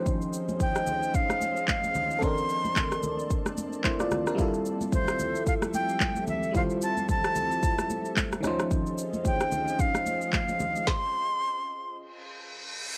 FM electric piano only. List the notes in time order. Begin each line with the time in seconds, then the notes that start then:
Already playing: F3 C#4 D#4 C5
2.19 C4 A4
2.23 D4 A#4
3.84 E4 C5
4.00 F4 D5
4.27 D4 A#4
4.35 G3 E4
4.39 F4 A4
6.51 G3 E4
6.56 F4 C5
8.40 D#3 C#4
8.45 F3 D#4 C5